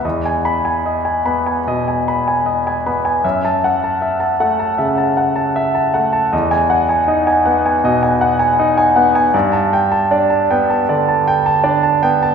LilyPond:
<<
  \new Staff \with { instrumentName = "Grand piano" } { \time 4/4 \key e \major \tempo 4 = 78 << { r8 b''8 r2. | r16 a''8 r2. r16 | r16 gis''8 r2. r16 | r16 a''8 r2. r16 | } \\ { dis''16 gis''8 gis''16 dis''16 gis''16 b''16 gis''16 dis''16 gis''16 b''16 gis''16 dis''16 gis''16 b''16 gis''16 | e''8 fis''16 a''16 e''16 a''16 fis''16 a''16 e''16 a''16 fis''16 a''16 e''16 a''16 fis''16 a''16 | dis''8 fis''16 gis''16 dis''16 gis''16 fis''16 gis''16 dis''16 gis''16 fis''16 gis''16 dis''16 gis''16 fis''16 gis''16 | d''8 g''16 a''16 d''16 a''16 g''16 a''16 d''16 a''16 g''16 a''16 d''16 a''16 g''16 a''16 | } >> }
  \new Staff \with { instrumentName = "Grand piano" } { \time 4/4 \key e \major e,4. b8 b,8 r4 b8 | fis,4. a8 cis8 r4 a8 | e,4 dis'8 b8 b,8 r8 dis'8 b8 | g,4 d'8 b8 d8 r8 d'8 b8 | }
>>